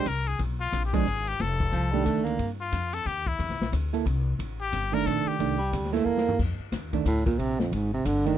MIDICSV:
0, 0, Header, 1, 7, 480
1, 0, Start_track
1, 0, Tempo, 332963
1, 568, Time_signature, 3, 2, 24, 8
1, 12078, End_track
2, 0, Start_track
2, 0, Title_t, "Muted trumpet"
2, 0, Program_c, 0, 59
2, 110, Note_on_c, 0, 70, 93
2, 396, Note_on_c, 0, 68, 78
2, 418, Note_off_c, 0, 70, 0
2, 573, Note_off_c, 0, 68, 0
2, 874, Note_on_c, 0, 65, 85
2, 1200, Note_off_c, 0, 65, 0
2, 1236, Note_on_c, 0, 67, 55
2, 1356, Note_on_c, 0, 68, 92
2, 1377, Note_off_c, 0, 67, 0
2, 1847, Note_on_c, 0, 67, 81
2, 1869, Note_off_c, 0, 68, 0
2, 2034, Note_on_c, 0, 69, 81
2, 2056, Note_off_c, 0, 67, 0
2, 3279, Note_off_c, 0, 69, 0
2, 3762, Note_on_c, 0, 65, 78
2, 4235, Note_on_c, 0, 69, 88
2, 4257, Note_off_c, 0, 65, 0
2, 4422, Note_on_c, 0, 67, 90
2, 4443, Note_off_c, 0, 69, 0
2, 4726, Note_on_c, 0, 64, 75
2, 4748, Note_off_c, 0, 67, 0
2, 5379, Note_off_c, 0, 64, 0
2, 6648, Note_on_c, 0, 67, 91
2, 7124, Note_on_c, 0, 70, 92
2, 7146, Note_off_c, 0, 67, 0
2, 7303, Note_on_c, 0, 69, 93
2, 7324, Note_off_c, 0, 70, 0
2, 7608, Note_on_c, 0, 67, 78
2, 7630, Note_off_c, 0, 69, 0
2, 8260, Note_off_c, 0, 67, 0
2, 12078, End_track
3, 0, Start_track
3, 0, Title_t, "Hollow-body jazz guitar"
3, 0, Program_c, 1, 26
3, 1342, Note_on_c, 1, 53, 59
3, 1355, Note_on_c, 1, 56, 72
3, 1364, Note_on_c, 1, 62, 70
3, 1508, Note_off_c, 1, 53, 0
3, 1515, Note_off_c, 1, 56, 0
3, 1519, Note_off_c, 1, 62, 0
3, 2783, Note_on_c, 1, 51, 61
3, 2790, Note_on_c, 1, 57, 66
3, 2799, Note_on_c, 1, 62, 77
3, 3411, Note_off_c, 1, 51, 0
3, 3414, Note_off_c, 1, 57, 0
3, 3418, Note_off_c, 1, 62, 0
3, 5667, Note_on_c, 1, 58, 51
3, 5672, Note_on_c, 1, 64, 66
3, 5681, Note_on_c, 1, 69, 61
3, 5831, Note_off_c, 1, 58, 0
3, 5833, Note_off_c, 1, 64, 0
3, 5838, Note_off_c, 1, 69, 0
3, 7095, Note_on_c, 1, 51, 65
3, 7109, Note_on_c, 1, 57, 75
3, 7119, Note_on_c, 1, 62, 73
3, 7727, Note_off_c, 1, 51, 0
3, 7734, Note_off_c, 1, 57, 0
3, 7739, Note_off_c, 1, 62, 0
3, 7773, Note_on_c, 1, 51, 51
3, 7785, Note_on_c, 1, 57, 56
3, 7789, Note_on_c, 1, 62, 59
3, 8039, Note_off_c, 1, 51, 0
3, 8045, Note_off_c, 1, 57, 0
3, 8047, Note_off_c, 1, 62, 0
3, 8545, Note_on_c, 1, 58, 67
3, 8554, Note_on_c, 1, 64, 68
3, 8561, Note_on_c, 1, 69, 74
3, 9172, Note_off_c, 1, 58, 0
3, 9177, Note_off_c, 1, 64, 0
3, 9180, Note_off_c, 1, 69, 0
3, 9992, Note_on_c, 1, 51, 51
3, 10001, Note_on_c, 1, 57, 54
3, 10010, Note_on_c, 1, 62, 62
3, 10154, Note_off_c, 1, 51, 0
3, 10158, Note_off_c, 1, 57, 0
3, 10163, Note_off_c, 1, 62, 0
3, 11899, Note_on_c, 1, 51, 62
3, 11909, Note_on_c, 1, 57, 60
3, 11919, Note_on_c, 1, 62, 66
3, 12068, Note_off_c, 1, 51, 0
3, 12073, Note_off_c, 1, 57, 0
3, 12078, Note_off_c, 1, 62, 0
3, 12078, End_track
4, 0, Start_track
4, 0, Title_t, "Baritone saxophone"
4, 0, Program_c, 2, 67
4, 2488, Note_on_c, 2, 53, 70
4, 2774, Note_on_c, 2, 55, 77
4, 2795, Note_off_c, 2, 53, 0
4, 2955, Note_on_c, 2, 57, 83
4, 2976, Note_off_c, 2, 55, 0
4, 3236, Note_on_c, 2, 58, 81
4, 3257, Note_off_c, 2, 57, 0
4, 3582, Note_off_c, 2, 58, 0
4, 8046, Note_on_c, 2, 55, 79
4, 8540, Note_on_c, 2, 57, 91
4, 8562, Note_off_c, 2, 55, 0
4, 8721, Note_on_c, 2, 58, 92
4, 8742, Note_off_c, 2, 57, 0
4, 9205, Note_off_c, 2, 58, 0
4, 10192, Note_on_c, 2, 45, 68
4, 10458, Note_off_c, 2, 45, 0
4, 10466, Note_on_c, 2, 46, 71
4, 10650, Note_on_c, 2, 48, 76
4, 10671, Note_off_c, 2, 46, 0
4, 10951, Note_on_c, 2, 41, 65
4, 10973, Note_off_c, 2, 48, 0
4, 11155, Note_on_c, 2, 44, 64
4, 11176, Note_off_c, 2, 41, 0
4, 11435, Note_off_c, 2, 44, 0
4, 11444, Note_on_c, 2, 48, 76
4, 11623, Note_on_c, 2, 50, 87
4, 11645, Note_off_c, 2, 48, 0
4, 11909, Note_on_c, 2, 51, 88
4, 11931, Note_off_c, 2, 50, 0
4, 12078, Note_off_c, 2, 51, 0
4, 12078, End_track
5, 0, Start_track
5, 0, Title_t, "Upright bass"
5, 0, Program_c, 3, 32
5, 82, Note_on_c, 3, 36, 83
5, 550, Note_off_c, 3, 36, 0
5, 564, Note_on_c, 3, 35, 86
5, 1032, Note_off_c, 3, 35, 0
5, 1045, Note_on_c, 3, 34, 88
5, 1507, Note_off_c, 3, 34, 0
5, 1515, Note_on_c, 3, 32, 91
5, 1987, Note_off_c, 3, 32, 0
5, 2007, Note_on_c, 3, 29, 76
5, 2473, Note_off_c, 3, 29, 0
5, 2485, Note_on_c, 3, 36, 90
5, 2952, Note_off_c, 3, 36, 0
5, 2965, Note_on_c, 3, 38, 81
5, 3432, Note_off_c, 3, 38, 0
5, 3442, Note_on_c, 3, 43, 75
5, 3911, Note_off_c, 3, 43, 0
5, 3925, Note_on_c, 3, 41, 83
5, 4392, Note_off_c, 3, 41, 0
5, 4404, Note_on_c, 3, 39, 82
5, 4872, Note_off_c, 3, 39, 0
5, 4886, Note_on_c, 3, 40, 79
5, 5030, Note_on_c, 3, 36, 49
5, 5052, Note_off_c, 3, 40, 0
5, 5189, Note_off_c, 3, 36, 0
5, 5198, Note_on_c, 3, 34, 62
5, 5351, Note_off_c, 3, 34, 0
5, 5369, Note_on_c, 3, 38, 94
5, 5834, Note_off_c, 3, 38, 0
5, 5844, Note_on_c, 3, 36, 96
5, 6312, Note_off_c, 3, 36, 0
5, 6326, Note_on_c, 3, 33, 80
5, 6793, Note_off_c, 3, 33, 0
5, 6810, Note_on_c, 3, 31, 85
5, 7275, Note_off_c, 3, 31, 0
5, 7289, Note_on_c, 3, 34, 90
5, 7566, Note_off_c, 3, 34, 0
5, 7769, Note_on_c, 3, 36, 82
5, 8234, Note_off_c, 3, 36, 0
5, 8256, Note_on_c, 3, 38, 86
5, 8718, Note_off_c, 3, 38, 0
5, 8728, Note_on_c, 3, 40, 90
5, 9194, Note_off_c, 3, 40, 0
5, 9209, Note_on_c, 3, 41, 76
5, 9486, Note_off_c, 3, 41, 0
5, 9687, Note_on_c, 3, 39, 86
5, 10154, Note_off_c, 3, 39, 0
5, 10167, Note_on_c, 3, 38, 87
5, 10634, Note_off_c, 3, 38, 0
5, 10647, Note_on_c, 3, 34, 74
5, 11114, Note_off_c, 3, 34, 0
5, 11126, Note_on_c, 3, 32, 80
5, 11593, Note_off_c, 3, 32, 0
5, 11605, Note_on_c, 3, 31, 88
5, 12073, Note_off_c, 3, 31, 0
5, 12078, End_track
6, 0, Start_track
6, 0, Title_t, "Muted upright bass strokes"
6, 7580, Note_on_c, 9, 29, 36
6, 7724, Note_off_c, 9, 29, 0
6, 9496, Note_on_c, 9, 29, 34
6, 9641, Note_off_c, 9, 29, 0
6, 12078, End_track
7, 0, Start_track
7, 0, Title_t, "Drums"
7, 84, Note_on_c, 9, 44, 50
7, 84, Note_on_c, 9, 51, 64
7, 88, Note_on_c, 9, 36, 21
7, 228, Note_off_c, 9, 44, 0
7, 228, Note_off_c, 9, 51, 0
7, 232, Note_off_c, 9, 36, 0
7, 383, Note_on_c, 9, 51, 42
7, 527, Note_off_c, 9, 51, 0
7, 564, Note_on_c, 9, 51, 55
7, 570, Note_on_c, 9, 36, 21
7, 708, Note_off_c, 9, 51, 0
7, 714, Note_off_c, 9, 36, 0
7, 1050, Note_on_c, 9, 36, 26
7, 1051, Note_on_c, 9, 44, 58
7, 1051, Note_on_c, 9, 51, 65
7, 1194, Note_off_c, 9, 36, 0
7, 1195, Note_off_c, 9, 44, 0
7, 1195, Note_off_c, 9, 51, 0
7, 1349, Note_on_c, 9, 51, 72
7, 1350, Note_on_c, 9, 36, 73
7, 1493, Note_off_c, 9, 51, 0
7, 1494, Note_off_c, 9, 36, 0
7, 1531, Note_on_c, 9, 44, 60
7, 1675, Note_off_c, 9, 44, 0
7, 1833, Note_on_c, 9, 51, 44
7, 1977, Note_off_c, 9, 51, 0
7, 2013, Note_on_c, 9, 36, 21
7, 2013, Note_on_c, 9, 38, 38
7, 2013, Note_on_c, 9, 51, 54
7, 2157, Note_off_c, 9, 36, 0
7, 2157, Note_off_c, 9, 38, 0
7, 2157, Note_off_c, 9, 51, 0
7, 2309, Note_on_c, 9, 36, 57
7, 2454, Note_off_c, 9, 36, 0
7, 2490, Note_on_c, 9, 36, 24
7, 2491, Note_on_c, 9, 51, 61
7, 2634, Note_off_c, 9, 36, 0
7, 2636, Note_off_c, 9, 51, 0
7, 2965, Note_on_c, 9, 44, 54
7, 2965, Note_on_c, 9, 51, 62
7, 2969, Note_on_c, 9, 36, 22
7, 3110, Note_off_c, 9, 44, 0
7, 3110, Note_off_c, 9, 51, 0
7, 3113, Note_off_c, 9, 36, 0
7, 3264, Note_on_c, 9, 51, 47
7, 3408, Note_off_c, 9, 51, 0
7, 3446, Note_on_c, 9, 51, 52
7, 3448, Note_on_c, 9, 36, 18
7, 3590, Note_off_c, 9, 51, 0
7, 3592, Note_off_c, 9, 36, 0
7, 3928, Note_on_c, 9, 36, 27
7, 3928, Note_on_c, 9, 44, 65
7, 3928, Note_on_c, 9, 51, 71
7, 4072, Note_off_c, 9, 44, 0
7, 4072, Note_off_c, 9, 51, 0
7, 4073, Note_off_c, 9, 36, 0
7, 4222, Note_on_c, 9, 51, 62
7, 4366, Note_off_c, 9, 51, 0
7, 4408, Note_on_c, 9, 44, 53
7, 4409, Note_on_c, 9, 36, 20
7, 4552, Note_off_c, 9, 44, 0
7, 4553, Note_off_c, 9, 36, 0
7, 4706, Note_on_c, 9, 36, 44
7, 4850, Note_off_c, 9, 36, 0
7, 4889, Note_on_c, 9, 36, 21
7, 4895, Note_on_c, 9, 51, 59
7, 5033, Note_off_c, 9, 36, 0
7, 5039, Note_off_c, 9, 51, 0
7, 5046, Note_on_c, 9, 38, 27
7, 5190, Note_off_c, 9, 38, 0
7, 5212, Note_on_c, 9, 38, 49
7, 5356, Note_off_c, 9, 38, 0
7, 5370, Note_on_c, 9, 36, 25
7, 5375, Note_on_c, 9, 44, 60
7, 5375, Note_on_c, 9, 51, 65
7, 5514, Note_off_c, 9, 36, 0
7, 5519, Note_off_c, 9, 44, 0
7, 5519, Note_off_c, 9, 51, 0
7, 5678, Note_on_c, 9, 51, 39
7, 5822, Note_off_c, 9, 51, 0
7, 5851, Note_on_c, 9, 36, 25
7, 5859, Note_on_c, 9, 51, 63
7, 5995, Note_off_c, 9, 36, 0
7, 6003, Note_off_c, 9, 51, 0
7, 6331, Note_on_c, 9, 36, 23
7, 6337, Note_on_c, 9, 51, 57
7, 6475, Note_off_c, 9, 36, 0
7, 6481, Note_off_c, 9, 51, 0
7, 6811, Note_on_c, 9, 36, 19
7, 6816, Note_on_c, 9, 44, 54
7, 6816, Note_on_c, 9, 51, 67
7, 6955, Note_off_c, 9, 36, 0
7, 6960, Note_off_c, 9, 44, 0
7, 6960, Note_off_c, 9, 51, 0
7, 7114, Note_on_c, 9, 51, 42
7, 7258, Note_off_c, 9, 51, 0
7, 7295, Note_on_c, 9, 36, 21
7, 7306, Note_on_c, 9, 44, 56
7, 7306, Note_on_c, 9, 51, 74
7, 7439, Note_off_c, 9, 36, 0
7, 7450, Note_off_c, 9, 44, 0
7, 7450, Note_off_c, 9, 51, 0
7, 7778, Note_on_c, 9, 36, 25
7, 7785, Note_on_c, 9, 51, 58
7, 7922, Note_off_c, 9, 36, 0
7, 7929, Note_off_c, 9, 51, 0
7, 8257, Note_on_c, 9, 36, 24
7, 8262, Note_on_c, 9, 44, 55
7, 8262, Note_on_c, 9, 51, 65
7, 8402, Note_off_c, 9, 36, 0
7, 8406, Note_off_c, 9, 44, 0
7, 8406, Note_off_c, 9, 51, 0
7, 8430, Note_on_c, 9, 38, 29
7, 8560, Note_on_c, 9, 51, 39
7, 8574, Note_off_c, 9, 38, 0
7, 8580, Note_on_c, 9, 38, 37
7, 8704, Note_off_c, 9, 51, 0
7, 8724, Note_off_c, 9, 38, 0
7, 8901, Note_on_c, 9, 38, 49
7, 9045, Note_off_c, 9, 38, 0
7, 9062, Note_on_c, 9, 43, 74
7, 9206, Note_off_c, 9, 43, 0
7, 9212, Note_on_c, 9, 49, 67
7, 9215, Note_on_c, 9, 36, 62
7, 9356, Note_off_c, 9, 49, 0
7, 9359, Note_off_c, 9, 36, 0
7, 9690, Note_on_c, 9, 38, 41
7, 9690, Note_on_c, 9, 44, 61
7, 9690, Note_on_c, 9, 51, 64
7, 9694, Note_on_c, 9, 36, 18
7, 9834, Note_off_c, 9, 38, 0
7, 9834, Note_off_c, 9, 44, 0
7, 9834, Note_off_c, 9, 51, 0
7, 9838, Note_off_c, 9, 36, 0
7, 9990, Note_on_c, 9, 36, 43
7, 9990, Note_on_c, 9, 51, 40
7, 10134, Note_off_c, 9, 36, 0
7, 10134, Note_off_c, 9, 51, 0
7, 10173, Note_on_c, 9, 44, 49
7, 10173, Note_on_c, 9, 51, 65
7, 10174, Note_on_c, 9, 36, 25
7, 10318, Note_off_c, 9, 36, 0
7, 10318, Note_off_c, 9, 44, 0
7, 10318, Note_off_c, 9, 51, 0
7, 10472, Note_on_c, 9, 36, 67
7, 10475, Note_on_c, 9, 51, 41
7, 10616, Note_off_c, 9, 36, 0
7, 10619, Note_off_c, 9, 51, 0
7, 10655, Note_on_c, 9, 36, 22
7, 10660, Note_on_c, 9, 51, 52
7, 10800, Note_off_c, 9, 36, 0
7, 10804, Note_off_c, 9, 51, 0
7, 10953, Note_on_c, 9, 38, 63
7, 11097, Note_off_c, 9, 38, 0
7, 11133, Note_on_c, 9, 36, 24
7, 11139, Note_on_c, 9, 51, 58
7, 11277, Note_off_c, 9, 36, 0
7, 11283, Note_off_c, 9, 51, 0
7, 11610, Note_on_c, 9, 44, 53
7, 11610, Note_on_c, 9, 51, 66
7, 11611, Note_on_c, 9, 36, 18
7, 11754, Note_off_c, 9, 44, 0
7, 11754, Note_off_c, 9, 51, 0
7, 11755, Note_off_c, 9, 36, 0
7, 11911, Note_on_c, 9, 51, 43
7, 12055, Note_off_c, 9, 51, 0
7, 12078, End_track
0, 0, End_of_file